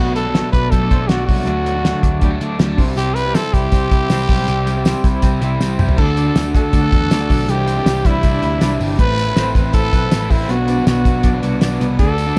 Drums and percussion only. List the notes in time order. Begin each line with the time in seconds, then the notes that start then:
0.16 closed hi-hat
0.35 snare, closed hi-hat
0.53 kick, closed hi-hat
0.72 kick, closed hi-hat
0.91 kick, closed hi-hat
1.09 snare, closed hi-hat
1.29 kick, open hi-hat
1.47 closed hi-hat
1.66 closed hi-hat
1.85 snare, closed hi-hat
2.03 kick, closed hi-hat
2.21 kick, closed hi-hat
2.41 closed hi-hat
2.59 snare, closed hi-hat
2.78 kick, open hi-hat
2.97 closed hi-hat
3.16 closed hi-hat, tambourine
3.35 snare, closed hi-hat, tambourine
3.54 kick, closed hi-hat, tambourine
3.72 kick, closed hi-hat, tambourine
3.91 kick, closed hi-hat, tambourine
4.10 snare, closed hi-hat, tambourine
4.29 kick, open hi-hat, tambourine
4.47 closed hi-hat, tambourine
4.67 closed hi-hat, tambourine
4.85 snare, closed hi-hat, tambourine
5.04 kick, closed hi-hat, tambourine
5.22 kick, closed hi-hat, tambourine
5.42 closed hi-hat, tambourine
5.61 snare, tambourine
5.79 mid tom, tambourine
5.89 floor tom
5.98 kick, crash, tambourine
6.17 closed hi-hat, tambourine
6.35 snare, closed hi-hat, tambourine
6.55 kick, closed hi-hat, tambourine
6.73 kick, closed hi-hat, tambourine
6.92 kick, closed hi-hat
7.11 snare, closed hi-hat, tambourine
7.30 kick, open hi-hat, tambourine
7.49 closed hi-hat, tambourine
7.67 closed hi-hat, tambourine
7.86 snare, closed hi-hat, tambourine
8.05 kick, closed hi-hat, tambourine
8.23 kick, closed hi-hat, tambourine
8.43 closed hi-hat, tambourine
8.61 snare, closed hi-hat, tambourine
8.80 open hi-hat, tambourine
8.99 kick, closed hi-hat
9.18 closed hi-hat, tambourine
9.36 snare, closed hi-hat, tambourine
9.55 kick, closed hi-hat, tambourine
9.73 kick, closed hi-hat, tambourine
9.93 kick, closed hi-hat, tambourine
10.11 snare, closed hi-hat, tambourine
10.30 kick, open hi-hat, tambourine
10.49 closed hi-hat, tambourine
10.68 closed hi-hat, tambourine
10.87 snare, closed hi-hat, tambourine
11.05 kick, closed hi-hat, tambourine
11.23 kick, closed hi-hat, tambourine
11.43 closed hi-hat, tambourine
11.61 snare, closed hi-hat, tambourine
11.81 closed hi-hat, tambourine
11.99 kick, closed hi-hat, tambourine
12.18 closed hi-hat, tambourine